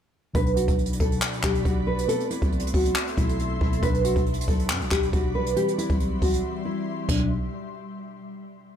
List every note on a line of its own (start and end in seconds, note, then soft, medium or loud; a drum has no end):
0.33 0.67 B1 loud
0.33 1.41 B2 medium
0.33 1.41 F#3 medium
0.33 1.42 D4 medium
0.33 2.07 F#4 medium
0.33 0.51 B4 loud
0.33 2.07 D5 medium
0.33 2.07 B5 medium
0.33 kick loud
0.33 closed hi-hat medium
0.46 closed hi-hat medium
0.57 0.73 F#4 medium
0.57 closed hi-hat medium
0.68 0.99 B1 loud
0.68 kick medium
0.68 closed hi-hat medium
0.78 closed hi-hat soft
0.86 closed hi-hat medium
0.93 closed hi-hat medium
1.00 1.21 B1 loud
1.00 1.17 A4 medium
1.00 kick medium
1.00 closed hi-hat medium
1.12 closed hi-hat medium
1.22 clap loud
1.22 closed hi-hat medium
1.33 closed hi-hat medium
1.43 1.64 B1 loud
1.43 2.09 B2 medium
1.43 2.09 F#3 medium
1.43 2.09 D4 medium
1.43 1.60 G4 medium
1.43 kick loud
1.43 clap loud
1.43 closed hi-hat medium
1.55 closed hi-hat medium
1.65 2.07 B1 loud
1.65 1.82 F#4 medium
1.65 kick medium
1.65 closed hi-hat medium
1.87 2.03 B4 medium
1.99 closed hi-hat medium
2.07 3.15 A3 medium
2.07 3.15 B3 medium
2.07 3.16 C4 medium
2.07 2.25 A4 loud
2.07 3.81 A4 medium
2.07 3.81 E5 medium
2.07 3.81 C6 medium
2.07 closed hi-hat medium
2.20 closed hi-hat medium
2.30 2.47 E4 medium
2.30 closed hi-hat medium
2.42 2.65 B1 loud
2.42 kick medium
2.42 closed hi-hat medium
2.52 closed hi-hat soft
2.59 closed hi-hat medium
2.64 2.73 C2 loud
2.64 closed hi-hat medium
2.74 2.95 B1 loud
2.74 3.15 F#4 medium
2.74 kick medium
2.74 open hi-hat medium
2.85 closed hi-hat medium
2.96 clap loud
2.96 closed hi-hat loud
3.07 closed hi-hat medium
3.17 3.59 B1 loud
3.17 3.80 B2 medium
3.17 3.83 A3 soft
3.17 3.83 B3 medium
3.17 3.58 E4 medium
3.17 kick loud
3.17 closed hi-hat medium
3.29 closed hi-hat medium
3.39 closed hi-hat medium
3.61 3.82 B1 loud
3.61 3.78 E4 medium
3.61 kick medium
3.73 closed hi-hat medium
3.81 4.15 B1 loud
3.81 5.52 B2 medium
3.81 5.53 F#3 medium
3.81 5.54 D4 medium
3.81 5.55 F#4 medium
3.81 3.99 B4 loud
3.81 5.55 D5 medium
3.81 5.55 B5 medium
3.81 kick loud
3.81 closed hi-hat medium
3.94 closed hi-hat medium
4.04 4.21 F#4 medium
4.04 closed hi-hat medium
4.16 4.47 B1 loud
4.16 kick medium
4.16 closed hi-hat medium
4.26 closed hi-hat soft
4.33 closed hi-hat medium
4.41 closed hi-hat medium
4.48 4.71 B1 loud
4.48 4.64 A4 medium
4.48 kick loud
4.48 closed hi-hat medium
4.59 closed hi-hat medium
4.70 4.83 F#2 loud
4.70 clap loud
4.70 closed hi-hat loud
4.81 4.91 B1 loud
4.81 closed hi-hat medium
4.91 5.12 B1 loud
4.91 5.08 G4 medium
4.91 kick loud
4.91 clap loud
4.91 closed hi-hat medium
5.03 closed hi-hat medium
5.13 5.36 B1 loud
5.13 5.29 F#4 medium
5.13 kick medium
5.13 closed hi-hat medium
5.35 5.48 C2 loud
5.35 5.51 B4 medium
5.46 5.56 B1 loud
5.46 closed hi-hat medium
5.55 7.05 E3 medium
5.55 7.06 G3 medium
5.55 7.07 G3 medium
5.55 7.06 C4 medium
5.55 5.73 G4 medium
5.55 7.07 E5 medium
5.55 7.07 C6 medium
5.55 closed hi-hat medium
5.68 closed hi-hat medium
5.78 5.95 E4 medium
5.78 closed hi-hat medium
5.90 6.21 B1 loud
5.90 kick medium
5.90 closed hi-hat medium
6.00 closed hi-hat medium
6.22 6.43 B1 loud
6.22 6.63 F#4 medium
6.22 kick medium
6.22 open hi-hat medium
6.33 closed hi-hat medium
6.65 7.06 E4 medium
7.09 7.49 B1 loud
7.09 7.29 B2 medium
7.09 7.29 F#3 medium
7.09 7.29 D4 medium
7.09 kick loud
7.09 closed hi-hat medium
7.09 crash medium